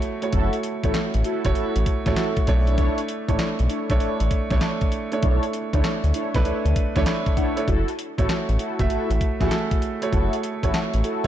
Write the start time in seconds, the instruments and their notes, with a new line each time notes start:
Already playing: grand piano A3 E4 F#4 C#5
0.02 closed hi-hat
0.22 grand piano A3 E4 F#4 C#5, closed hi-hat
0.33 analog synth bass F#1, analog polysynth E4 F#4 A4, kick, closed hi-hat
0.53 closed hi-hat
0.63 closed hi-hat
0.83 analog synth bass A1, grand piano A3 E4 F#4 C#5, analog polysynth E4 F#4 A4, kick, closed hi-hat
0.94 snare, clap, closed hi-hat
1.14 analog synth bass A1, closed hi-hat
1.24 analog polysynth E4 F#4 A4, closed hi-hat
1.45 analog synth bass F#1, grand piano A3 E4 F#4 C#5, kick, closed hi-hat
1.55 analog synth bass A1, analog polysynth E4 F#4 A4, closed hi-hat
1.76 analog synth bass A1, closed hi-hat
1.86 kick, closed hi-hat
2.06 analog synth bass A1, grand piano A3 E4 F#4 C#5, analog polysynth E4 F#4 A4, kick, snare, closed hi-hat
2.16 analog polysynth E4 F#4 A4, grand piano A5, snare, clap, closed hi-hat
2.37 kick, closed hi-hat
2.47 analog synth bass B1, grand piano A3 D4 E4 C#5 E5, kick, closed hi-hat
2.67 analog polysynth D4 E4 A4 C#5, closed hi-hat
2.78 analog polysynth D4 E4 A4 C#5, kick, closed hi-hat
2.98 closed hi-hat
3.08 closed hi-hat
3.28 analog synth bass A1, grand piano A3 D4 E4 C#5, analog polysynth D4 E4 A4 C#5, kick, closed hi-hat
3.39 snare, clap, closed hi-hat
3.59 analog synth bass B1, closed hi-hat
3.70 analog polysynth D4 E4 A4 C#5, closed hi-hat
3.90 analog synth bass B1, grand piano A3 D4 E4 C#5, kick, closed hi-hat
4.00 analog synth bass A1, analog polysynth D4 E4 A4 C#5, closed hi-hat
4.20 analog synth bass A1, closed hi-hat
4.31 kick, closed hi-hat
4.50 analog synth bass B1, grand piano A3 D4 E4 C#5, analog polysynth D4 E4 A4 C#5, kick, snare, closed hi-hat
4.61 snare, clap, closed hi-hat
4.81 kick, closed hi-hat
4.92 closed hi-hat
5.12 grand piano A3 D4 E4 C#5, closed hi-hat
5.22 analog synth bass B1, analog polysynth D4 E4 A4 C#5, kick, closed hi-hat
5.43 closed hi-hat
5.53 closed hi-hat
5.73 analog synth bass D2, grand piano A3 D4 E4 C#5, analog polysynth D4 E4 A4 C#5, kick, closed hi-hat
5.84 snare, clap, closed hi-hat
6.04 analog synth bass D2, closed hi-hat
6.14 analog polysynth D4 E4 A4 C#5, closed hi-hat
6.34 analog synth bass B1, grand piano A3 D4 E4 B4, kick, snare, closed hi-hat
6.45 analog synth bass D2, analog polysynth D4 E4 A4 C#5, closed hi-hat
6.65 analog synth bass D2, closed hi-hat
6.76 kick, closed hi-hat
6.96 analog synth bass D2, grand piano A3 D4 E4 C#5, analog polysynth D4 E4 A4 C#5, kick, snare, closed hi-hat
7.06 grand piano B5, snare, clap, closed hi-hat
7.26 kick, closed hi-hat
7.37 analog polysynth D4 E4 A4 C#5, grand piano F#5, kick, closed hi-hat
7.56 grand piano A3 D4 E4 C#5, closed hi-hat
7.68 analog synth bass F#1, analog polysynth E4 F#4 A4, kick, closed hi-hat
7.88 closed hi-hat
7.99 closed hi-hat
8.18 analog synth bass A1, grand piano A3 E4 F#4 C#5, analog polysynth E4 F#4 A4, kick, closed hi-hat
8.29 snare, clap, closed hi-hat
8.49 analog synth bass A1, closed hi-hat
8.59 analog polysynth E4 F#4 A4, closed hi-hat
8.79 analog synth bass F#1, grand piano A3 E4 F#4 E5, kick, closed hi-hat
8.90 analog synth bass A1, analog polysynth E4 F#4 A4, closed hi-hat
9.10 analog synth bass A1, closed hi-hat
9.21 kick, closed hi-hat
9.40 analog synth bass A1, grand piano A3 E4 F#4 G#4, analog polysynth E4 F#4 A4, kick, snare, closed hi-hat
9.48 grand piano A4, snare, clap, closed hi-hat
9.71 kick, closed hi-hat
9.82 closed hi-hat
10.02 grand piano A3 E4 F#4 C#5, closed hi-hat
10.12 analog synth bass F#1, analog polysynth E4 F#4 A4, kick, closed hi-hat
10.33 closed hi-hat
10.43 closed hi-hat
10.63 analog synth bass A1, grand piano A3 E4 F#4 C#5, analog polysynth E4 F#4 A4, kick, closed hi-hat
10.74 snare, clap, closed hi-hat
10.94 analog synth bass A1, closed hi-hat
11.04 analog polysynth E4 F#4 A4, closed hi-hat